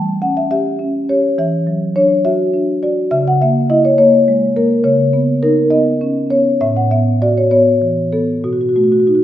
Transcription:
0.00 1.34 E3 soft
0.00 0.39 G3 soft
0.00 0.21 G5 medium
0.22 0.68 C#4 soft
0.22 0.36 F#5 medium
0.37 0.50 E5 medium
0.51 0.97 G4 soft
0.51 1.06 E5 medium
0.79 1.25 C#4 soft
1.09 1.38 G4 soft
1.09 1.36 C#5 medium
1.38 3.08 E3 medium
1.38 1.94 E5 medium
1.67 2.13 F#3 soft
1.96 2.42 D4 soft
1.96 2.24 C#5 medium
2.25 2.71 F#4 medium
2.25 2.81 E5 medium
2.54 3.00 D4 soft
2.83 3.12 F#4 soft
2.83 3.11 D5 medium
3.11 4.81 C#3 medium
3.11 3.26 E5 medium
3.28 3.41 F#5 medium
3.42 3.88 A#3 soft
3.42 3.69 E5 medium
3.70 4.16 E4 soft
3.70 3.84 D#5 medium
3.85 3.97 C#5 medium
3.98 4.45 A#3 medium
3.98 4.54 C#5 medium
4.28 4.74 G#3 medium
4.56 4.85 A#3 soft
4.56 4.84 A#4 medium
4.84 6.56 C#3 medium
4.84 5.40 C#5 medium
5.13 5.60 B3 soft
5.43 5.89 D#4 medium
5.43 5.70 A#4 medium
5.70 6.18 B3 medium
5.70 6.28 D#5 medium
6.01 6.49 C#4 soft
6.30 6.60 B3 soft
6.30 6.59 C#5 medium
6.61 8.41 A2 medium
6.61 6.76 E5 medium
6.76 6.91 F#5 medium
6.91 7.39 B3 soft
6.91 7.20 E5 medium
7.22 7.70 F#4 soft
7.22 7.36 D5 medium
7.37 7.50 C#5 medium
7.51 8.01 B3 soft
7.51 8.11 C#5 medium
7.82 8.32 E3 soft
8.13 8.45 B3 soft
8.13 8.43 A4 medium
8.44 9.24 B2 soft
8.44 8.53 F#4 medium
8.53 8.61 F#4 soft
8.61 8.69 F#4 soft
8.69 8.76 F#4 soft
8.76 9.24 A3 soft
8.76 8.84 F#4 soft
8.84 8.92 F#4 soft
8.92 9.00 F#4 soft
9.00 9.07 F#4 soft
9.07 9.24 D#4 soft
9.07 9.15 F#4 soft
9.15 9.24 F#4 soft

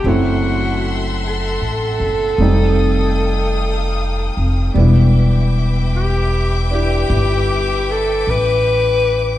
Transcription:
0.00 0.10 G4 medium
0.00 2.36 A4 medium
0.00 2.37 E5 medium
0.00 2.37 C6 medium
0.04 1.57 F#1 medium
0.04 2.40 F#3 soft
0.04 2.39 A3 soft
0.04 2.40 C4 soft
0.04 2.41 E4 soft
0.04 2.37 F#5 medium
0.09 1.07 F#4 medium
1.27 4.35 A4 medium
1.61 1.98 A1 soft
2.00 2.36 F#1 medium
2.37 4.32 F1 medium
2.37 4.72 G3 soft
2.37 4.75 A3 soft
2.37 4.71 A4 medium
2.37 4.71 F5 medium
2.37 4.71 G5 medium
2.37 4.70 D#6 medium
2.42 4.75 C4 soft
2.42 4.75 D#4 soft
4.37 4.72 F1 medium
4.73 7.05 E1 medium
4.73 9.38 G3 soft
4.73 9.38 B3 soft
4.73 9.38 B4 medium
4.73 9.38 E5 medium
4.73 9.38 G5 medium
4.73 9.38 D6 medium
4.77 6.69 D4 soft
4.77 6.71 E4 soft
5.96 6.70 G4 medium
6.70 9.38 D4 soft
6.70 9.38 E4 soft
6.75 7.93 G4 medium
7.10 8.22 G1 medium
7.91 8.32 A4 medium
8.27 9.38 A1 medium
8.27 9.38 B4 medium

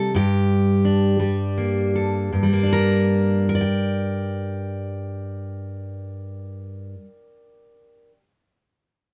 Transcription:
0.00 0.15 C3 medium
0.00 1.19 G3 medium
0.00 0.16 A#3 medium
0.00 0.11 D#4 medium
0.00 0.15 A4 medium
0.15 2.31 G2 medium
0.15 1.95 G4 medium
0.85 2.62 D4 soft
1.20 2.29 G3 medium
1.58 2.52 A#3 soft
1.95 2.29 A4 soft
2.32 6.94 G2 medium
2.43 7.05 G3 medium
2.53 3.49 A#3 medium
2.63 3.55 D4 medium
2.73 3.48 A#4 medium
3.49 8.11 A#4 medium
3.55 8.17 D5 medium
3.61 8.23 G5 medium

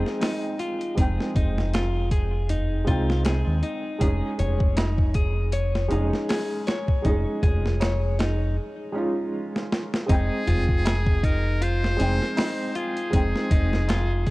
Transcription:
0.00 0.92 G#3 medium
0.00 0.93 C4 medium
0.00 0.94 D#4 medium
0.00 0.20 G#4 medium
0.00 0.95 G5 medium
0.07 snare soft
0.21 0.58 D#4 medium
0.21 snare loud
0.21 open hi-hat medium
0.21 tabla na medium
0.60 0.96 F4 loud
0.60 closed hi-hat medium
0.81 closed hi-hat soft
0.95 1.16 F1 medium
0.95 2.82 G#3 medium
0.95 2.83 C4 medium
0.95 2.84 D#4 medium
0.95 1.34 G#4 medium
0.95 kick loud
0.95 closed hi-hat medium
1.00 2.85 G5 medium
1.20 snare soft
1.35 2.84 F1 medium
1.35 1.72 D#4 medium
1.35 kick loud
1.35 closed hi-hat medium
1.35 tabla ge medium
1.58 snare soft
1.73 2.10 F4 medium
1.73 snare loud
1.73 closed hi-hat medium
1.73 tabla na medium
2.11 2.48 G#4 medium
2.11 kick medium
2.11 closed hi-hat medium
2.49 2.86 D#4 medium
2.49 closed hi-hat medium
2.49 tabla ge medium
2.84 3.43 C2 medium
2.84 3.96 G#3 medium
2.84 3.97 C4 medium
2.84 3.98 D#4 medium
2.84 3.24 F4 loud
2.84 kick medium
2.84 closed hi-hat medium
2.90 3.99 G5 medium
3.10 snare soft
3.25 3.62 G#4 medium
3.25 snare loud
3.25 closed hi-hat medium
3.25 tabla na medium
3.47 3.62 D#2 medium
3.63 4.00 D#4 medium
3.63 closed hi-hat medium
3.99 4.20 F1 medium
3.99 5.86 G#3 medium
3.99 5.87 C#4 medium
3.99 5.88 D#4 medium
3.99 4.38 G#4 medium
3.99 kick loud
3.99 closed hi-hat medium
4.04 5.89 G#4 medium
4.39 5.88 F1 loud
4.39 4.76 C#5 medium
4.39 closed hi-hat medium
4.39 tabla ge medium
4.60 kick loud
4.77 5.13 D#4 medium
4.77 snare loud
4.77 closed hi-hat medium
4.77 tabla na medium
4.98 kick medium
5.14 5.52 G#4 loud
5.14 kick medium
5.14 closed hi-hat medium
5.52 5.90 C#5 medium
5.52 closed hi-hat medium
5.75 snare soft
5.88 6.10 F1 loud
5.88 7.00 G#3 medium
5.88 7.01 C#4 medium
5.88 6.28 D#4 medium
5.88 7.02 D#4 medium
5.88 closed hi-hat medium
5.94 7.02 G#4 medium
6.13 snare soft
6.29 6.66 G#4 loud
6.29 snare loud
6.29 open hi-hat medium
6.29 tabla na medium
6.67 7.04 C#5 medium
6.67 snare medium
6.67 closed hi-hat medium
6.88 kick medium
7.02 7.24 F1 medium
7.02 8.90 G#3 medium
7.02 8.90 C#4 medium
7.02 7.42 D#4 medium
7.02 8.91 D#4 medium
7.02 kick medium
7.02 closed hi-hat medium
7.08 8.92 G#4 medium
7.43 8.57 F1 medium
7.43 7.79 G#4 medium
7.43 kick loud
7.43 closed hi-hat medium
7.43 tabla ge medium
7.66 snare soft
7.81 8.17 C#5 medium
7.81 snare loud
7.81 closed hi-hat medium
7.81 tabla na medium
8.19 8.55 D#4 medium
8.19 snare loud
8.19 closed hi-hat medium
8.93 10.04 G#3 medium
8.93 10.05 C#4 medium
8.93 10.06 D#4 medium
8.98 10.06 F4 medium
9.56 snare medium
9.72 snare medium
9.94 snare medium
10.06 10.28 F1 loud
10.06 11.94 G#3 medium
10.06 11.94 C4 medium
10.06 10.46 D#4 medium
10.06 11.95 D#4 medium
10.06 kick loud
10.06 closed hi-hat medium
10.11 11.26 G#4 loud
10.11 11.96 G5 medium
10.47 11.96 F1 medium
10.47 10.83 F4 loud
10.47 closed hi-hat medium
10.47 tabla ge medium
10.69 kick loud
10.85 11.21 G#4 medium
10.85 snare loud
10.85 closed hi-hat medium
10.85 tabla na medium
11.07 kick medium
11.23 11.59 D#4 medium
11.23 11.64 A#4 loud
11.23 kick loud
11.23 closed hi-hat medium
11.61 11.97 F4 loud
11.61 12.76 C5 loud
11.61 closed hi-hat medium
11.84 snare soft
11.96 12.18 F1 loud
11.96 13.08 G#3 medium
11.96 13.09 C4 medium
11.96 13.09 D#4 medium
11.96 12.35 G#4 medium
11.96 closed hi-hat medium
12.02 13.10 G5 medium
12.22 snare soft
12.37 12.73 D#4 medium
12.37 snare loud
12.37 open hi-hat medium
12.37 tabla na medium
12.75 13.11 F4 loud
12.75 14.30 G#4 medium
12.75 closed hi-hat medium
12.96 closed hi-hat soft
13.10 13.32 F1 medium
13.10 14.30 G#3 medium
13.10 14.30 C4 medium
13.10 14.30 D#4 medium
13.10 13.49 G#4 medium
13.10 kick loud
13.10 closed hi-hat medium
13.16 14.30 G5 medium
13.35 snare soft
13.51 14.30 F1 medium
13.51 13.87 D#4 medium
13.51 kick loud
13.51 closed hi-hat medium
13.51 tabla ge medium
13.73 snare soft
13.88 14.25 F4 loud
13.88 snare loud
13.88 closed hi-hat medium
13.88 tabla na medium
14.26 14.30 G#4 medium
14.26 kick medium
14.26 closed hi-hat medium

